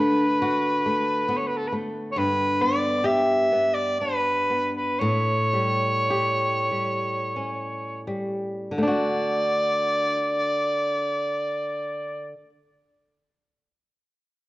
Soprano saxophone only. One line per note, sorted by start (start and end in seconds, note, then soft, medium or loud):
0.00 1.39 B4 medium
1.37 1.49 C#5 soft
1.48 1.58 B4 soft
1.57 1.69 A4 medium
1.67 1.74 B4 medium
2.12 2.20 C#5 medium
2.18 2.63 B4 medium
2.62 3.07 D5 medium
3.06 3.76 E5 medium
3.74 3.99 D5 medium
4.00 4.71 B4 medium
4.76 5.01 B4 medium
5.00 8.05 C#5 medium
8.79 12.37 D5 medium